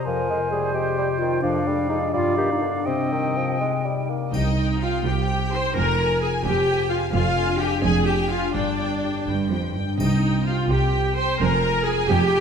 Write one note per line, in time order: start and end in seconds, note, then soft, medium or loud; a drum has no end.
0.00 0.73 C4 soft
0.00 0.97 C5 soft
0.05 1.42 F2 soft
0.05 0.29 F3 soft
0.05 0.50 A#4 medium
0.05 1.40 C5 soft
0.05 0.76 G#5 soft
0.29 1.45 C3 soft
0.29 0.40 G#3 soft
0.51 0.77 G3 soft
0.51 1.65 G#3 soft
0.51 0.73 G#4 medium
0.74 0.97 G#3 medium
0.74 1.19 C4 soft
0.74 1.20 G4 medium
0.74 1.42 G5 soft
0.98 1.08 G3 soft
0.98 1.45 C5 soft
1.19 1.43 D#3 soft
1.19 1.45 C4 soft
1.19 1.42 F4 medium
1.42 2.15 F2 soft
1.42 1.68 F3 medium
1.42 1.88 D4 medium
1.42 2.12 D5 soft
1.42 2.12 F5 soft
1.66 1.89 G3 soft
1.66 2.15 G#3 soft
1.89 2.13 G#3 soft
1.89 2.61 D4 soft
1.89 1.99 D#4 medium
1.89 2.16 G#4 soft
2.13 2.89 G2 soft
2.13 2.37 G3 medium
2.13 2.37 F4 medium
2.13 2.88 D5 soft
2.13 2.87 F5 soft
2.37 2.48 D#3 soft
2.37 2.89 B3 soft
2.37 2.53 G4 medium
2.51 2.64 D#4 medium
2.62 2.85 D3 soft
2.62 2.89 D4 soft
2.62 2.88 D4 soft
2.62 3.83 G4 soft
2.85 3.11 C3 medium
2.85 4.32 C3 soft
2.85 4.10 C4 medium
2.85 4.10 D#5 soft
2.85 4.09 G5 soft
3.11 3.38 D#3 soft
3.11 5.78 G3 soft
3.36 3.60 F3 soft
3.36 4.56 C4 soft
3.60 3.87 G#3 medium
3.60 4.08 D#4 soft
3.85 4.11 G3 soft
3.85 4.80 G4 soft
4.09 4.34 A#3 soft
4.09 5.51 D#4 soft
4.33 4.95 C2 soft
4.33 4.95 C2 medium
4.33 5.77 C3 soft
4.33 5.02 C3 soft
4.33 4.79 D#4 medium
4.33 4.78 D#5 medium
4.33 4.57 G5 soft
4.33 triangle soft
4.57 5.98 C4 soft
4.57 4.82 G5 soft
4.81 5.06 F4 medium
4.81 5.27 G4 soft
4.81 5.06 F5 soft
4.81 5.04 G5 soft
5.05 5.65 C2 medium
5.05 5.65 C2 soft
5.05 5.53 G4 medium
5.05 6.44 C5 soft
5.05 5.29 G5 soft
5.05 5.52 G5 medium
5.28 5.77 G4 soft
5.28 5.51 G5 soft
5.52 5.77 D#4 soft
5.52 5.76 C5 medium
5.52 5.75 G5 soft
5.52 5.76 C6 medium
5.75 6.34 F1 medium
5.75 7.12 F2 soft
5.75 6.35 F2 soft
5.75 6.21 A#4 medium
5.75 5.97 G#5 soft
5.75 6.22 A#5 medium
5.99 7.15 C4 soft
5.99 6.20 G#5 soft
6.21 6.30 G#4 medium
6.21 6.67 G#4 soft
6.21 6.43 G#5 soft
6.21 6.45 G#5 medium
6.44 7.03 F1 medium
6.44 7.03 F2 medium
6.44 6.90 G4 medium
6.44 7.15 C5 soft
6.44 6.91 G5 medium
6.44 6.66 G#5 soft
6.67 7.58 G#4 soft
6.67 6.89 G#5 soft
6.90 6.99 F4 medium
6.90 8.57 F4 soft
6.90 7.12 F5 medium
6.90 7.12 G#5 soft
7.13 7.72 F1 medium
7.13 8.57 F2 medium
7.13 7.72 F2 medium
7.13 7.59 F4 medium
7.13 7.59 F5 medium
7.13 7.35 G#5 medium
7.36 8.30 D4 soft
7.36 7.59 G#5 soft
7.59 7.83 G4 medium
7.59 8.06 G#4 soft
7.59 7.83 G5 medium
7.59 7.81 G#5 soft
7.82 8.44 F1 medium
7.82 8.44 F2 medium
7.82 8.07 G#4 medium
7.82 10.02 D5 soft
7.82 8.05 G#5 soft
7.82 8.06 G#5 medium
8.07 8.31 G4 medium
8.07 8.57 G#4 soft
8.07 8.30 G5 medium
8.07 8.29 G#5 soft
8.30 9.75 D4 soft
8.30 8.55 F4 medium
8.30 8.55 F5 medium
8.30 8.54 G#5 soft
8.53 9.16 G1 medium
8.53 9.16 G2 medium
8.53 10.02 G2 soft
8.53 9.26 D4 medium
8.53 9.27 D5 medium
8.53 8.77 G5 soft
8.79 10.02 B3 soft
8.79 9.02 G5 soft
9.03 9.51 G4 soft
9.03 9.26 G5 soft
9.28 9.89 G1 soft
9.28 9.50 G2 medium
9.28 10.02 B4 soft
9.28 9.50 G5 soft
9.52 9.76 F2 soft
9.52 10.46 G4 soft
9.52 9.74 G5 soft
9.75 10.00 G2 soft
9.75 10.02 D4 soft
9.75 9.99 G5 soft
10.00 10.60 C2 soft
10.00 10.67 C3 medium
10.00 11.43 C3 soft
10.00 10.60 C3 soft
10.00 10.44 D#4 medium
10.00 10.44 D#5 soft
10.00 10.23 G5 soft
10.00 triangle soft
10.24 11.17 C4 soft
10.24 10.46 G5 soft
10.47 10.71 F4 medium
10.47 10.93 G4 soft
10.47 10.55 F5 soft
10.47 10.70 G5 soft
10.70 11.30 C2 medium
10.70 11.30 C3 medium
10.70 11.18 G4 medium
10.70 12.40 C5 soft
10.70 11.16 G5 medium
10.70 10.92 G5 soft
10.94 11.43 G4 soft
10.94 11.16 G5 soft
11.17 12.40 C4 soft
11.17 11.40 C5 medium
11.17 11.40 G5 soft
11.17 11.40 C6 medium
11.40 11.99 F1 medium
11.40 12.40 F2 medium
11.40 11.99 F2 medium
11.40 11.87 A#4 medium
11.40 11.63 G#5 soft
11.40 11.86 A#5 medium
11.64 12.40 G#3 soft
11.64 11.86 G#5 soft
11.86 12.32 F4 soft
11.86 12.10 G#4 medium
11.86 12.10 G#5 medium
11.86 12.09 G#5 medium
12.10 12.40 F1 medium
12.10 12.40 F2 medium
12.10 12.40 G4 medium
12.10 12.40 G#4 medium
12.10 12.40 G5 medium
12.10 12.31 G#5 medium
12.32 12.40 F4 soft
12.32 12.40 G#5 medium